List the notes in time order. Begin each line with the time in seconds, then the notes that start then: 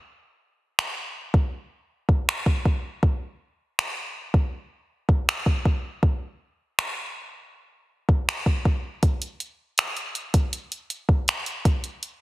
0.79 finger snap
1.34 kick
2.09 kick
2.29 finger snap
2.46 kick
2.65 kick
3.03 kick
3.79 finger snap
4.34 kick
5.09 kick
5.29 finger snap
5.46 kick
5.65 kick
6.03 kick
6.79 finger snap
8.09 kick
8.29 finger snap
8.46 kick
8.65 kick
9.03 kick, closed hi-hat
9.22 closed hi-hat
9.40 closed hi-hat
9.78 finger snap, closed hi-hat
9.97 closed hi-hat
10.15 closed hi-hat
10.34 kick, closed hi-hat
10.53 closed hi-hat
10.72 closed hi-hat
10.90 closed hi-hat
11.09 kick
11.28 finger snap, closed hi-hat
11.46 closed hi-hat
11.65 kick, closed hi-hat
11.84 closed hi-hat
12.03 closed hi-hat